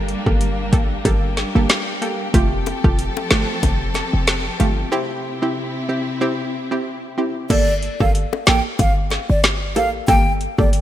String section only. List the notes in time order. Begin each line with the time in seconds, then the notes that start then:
Already playing: G3 A#3 D4 G4
2.34 F3 C4 A4
4.92 C3 C4 E4